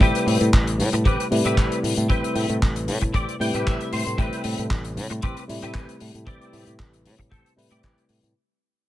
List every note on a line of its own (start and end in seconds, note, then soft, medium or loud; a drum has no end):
0.00 0.11 A1 medium
0.00 1.28 C3 medium
0.00 1.28 G3 medium
0.00 1.28 A3 medium
0.00 0.47 C4 loud
0.00 1.29 E4 medium
0.00 0.47 G4 loud
0.00 1.29 B4 medium
0.00 0.48 B4 loud
0.00 kick loud
0.00 closed hi-hat medium
0.15 closed hi-hat medium
0.27 0.37 A2 loud
0.27 open hi-hat loud
0.41 0.50 A2 loud
0.41 closed hi-hat medium
0.53 0.81 A1 medium
0.53 kick loud
0.53 clap loud
0.53 closed hi-hat medium
0.67 closed hi-hat medium
0.79 0.90 A2 medium
0.79 open hi-hat loud
0.93 1.02 A2 medium
0.93 muted clean electric guitar stroke medium
0.93 closed hi-hat medium
1.05 1.16 A1 medium
1.05 1.25 C4 medium
1.05 1.25 G4 medium
1.05 1.26 B4 medium
1.05 kick loud
1.05 closed hi-hat medium
1.20 closed hi-hat medium
1.31 1.42 A2 medium
1.31 2.06 C3 medium
1.31 2.06 G3 medium
1.31 2.07 A3 medium
1.31 2.07 E4 loud
1.31 2.07 B4 medium
1.31 open hi-hat loud
1.45 1.54 A2 medium
1.45 1.77 C4 medium
1.45 1.78 G4 medium
1.45 1.78 B4 medium
1.45 closed hi-hat soft
1.57 1.68 A1 medium
1.57 kick loud
1.57 clap loud
1.57 closed hi-hat medium
1.72 closed hi-hat medium
1.83 1.94 A2 medium
1.83 open hi-hat loud
1.98 2.07 A2 medium
1.98 closed hi-hat medium
2.09 2.20 A1 loud
2.09 3.37 C3 medium
2.09 3.37 G3 medium
2.09 3.37 A3 medium
2.09 2.56 C4 loud
2.09 3.38 E4 medium
2.09 2.56 G4 loud
2.09 2.56 B4 loud
2.09 3.38 B4 medium
2.09 kick loud
2.09 closed hi-hat medium
2.24 closed hi-hat medium
2.35 2.46 A2 medium
2.35 open hi-hat loud
2.49 2.59 A2 loud
2.49 closed hi-hat soft
2.62 2.89 A1 loud
2.62 kick loud
2.62 clap loud
2.62 closed hi-hat medium
2.76 closed hi-hat medium
2.88 2.98 A2 medium
2.88 open hi-hat loud
3.01 3.11 A2 medium
3.01 muted clean electric guitar stroke medium
3.01 kick medium
3.01 closed hi-hat soft
3.14 3.24 A1 medium
3.14 3.34 C4 medium
3.14 3.34 G4 medium
3.14 3.34 D5 medium
3.14 kick loud
3.14 closed hi-hat medium
3.29 closed hi-hat soft
3.39 3.50 A2 medium
3.39 4.15 C3 medium
3.39 4.15 G3 medium
3.39 4.15 A3 medium
3.39 4.16 E4 loud
3.39 4.16 B4 medium
3.39 3.65 G5 medium
3.39 open hi-hat medium
3.54 3.63 A2 medium
3.54 3.86 C4 medium
3.54 3.86 G4 medium
3.54 3.87 B4 medium
3.54 closed hi-hat soft
3.67 3.77 A1 medium
3.67 3.91 E5 medium
3.67 kick loud
3.67 clap loud
3.67 closed hi-hat medium
3.81 closed hi-hat medium
3.93 4.03 A2 medium
3.93 4.17 C5 medium
3.93 open hi-hat loud
4.07 4.16 A2 medium
4.07 closed hi-hat medium
4.18 4.29 A1 medium
4.18 5.45 C3 medium
4.18 5.46 G3 medium
4.18 5.46 A3 medium
4.18 4.64 C4 loud
4.18 5.46 E4 medium
4.18 4.64 G4 loud
4.18 4.65 B4 loud
4.18 kick loud
4.18 closed hi-hat medium
4.33 closed hi-hat soft
4.44 4.55 A2 loud
4.44 open hi-hat loud
4.58 4.68 A2 medium
4.58 closed hi-hat soft
4.70 4.98 A1 medium
4.70 kick loud
4.70 clap loud
4.70 closed hi-hat medium
4.85 closed hi-hat soft
4.97 5.07 A2 medium
4.97 open hi-hat medium
5.10 5.20 A2 medium
5.10 muted clean electric guitar stroke medium
5.10 closed hi-hat medium
5.22 5.33 A1 medium
5.22 5.43 C4 medium
5.22 5.43 G4 medium
5.22 5.43 B4 medium
5.22 kick loud
5.22 closed hi-hat medium
5.37 closed hi-hat soft
5.48 5.59 A2 medium
5.48 6.24 C3 medium
5.48 6.24 G3 medium
5.48 6.24 A3 medium
5.48 6.25 E4 loud
5.48 open hi-hat loud
5.62 5.72 A2 medium
5.62 5.95 C4 medium
5.62 5.95 G4 medium
5.62 5.95 B4 medium
5.62 closed hi-hat soft
5.74 kick loud
5.74 clap loud
5.74 closed hi-hat medium
5.89 closed hi-hat soft
6.00 6.12 A2 medium
6.00 open hi-hat loud
6.15 6.24 A2 medium
6.15 closed hi-hat soft
6.26 6.37 A1 medium
6.26 7.54 C3 medium
6.26 7.54 G3 medium
6.26 7.55 A3 medium
6.26 6.73 C4 loud
6.26 7.55 E4 medium
6.26 6.73 G4 loud
6.26 7.55 B4 medium
6.26 6.73 D5 loud
6.26 kick loud
6.26 closed hi-hat medium
6.42 closed hi-hat soft
6.53 6.64 A2 medium
6.53 open hi-hat medium
6.67 6.76 A2 medium
6.67 closed hi-hat medium
6.79 7.07 A1 medium
6.79 kick loud
6.79 clap loud
6.79 closed hi-hat medium
6.93 closed hi-hat medium
7.05 7.16 A2 medium
7.05 open hi-hat loud
7.19 7.28 A2 medium
7.19 muted clean electric guitar stroke medium
7.19 kick medium
7.19 closed hi-hat soft
7.31 7.42 A1 medium
7.31 7.51 C4 medium
7.31 7.51 G4 medium
7.31 7.52 A4 medium
7.31 kick loud
7.31 closed hi-hat medium
7.46 closed hi-hat medium
7.56 7.68 A2 medium
7.56 8.32 C3 medium
7.56 8.32 G3 medium
7.56 8.33 A3 medium
7.56 8.33 E4 medium
7.56 8.33 B4 medium
7.56 open hi-hat loud
7.71 7.80 A2 medium
7.71 8.03 C4 medium
7.71 8.03 G4 medium
7.71 8.04 D5 medium
7.71 closed hi-hat soft
7.83 7.94 A1 medium
7.83 kick loud
7.83 clap loud
7.83 closed hi-hat medium
7.98 closed hi-hat medium
8.09 8.20 A2 medium
8.09 open hi-hat loud
8.23 8.33 A2 medium
8.23 closed hi-hat soft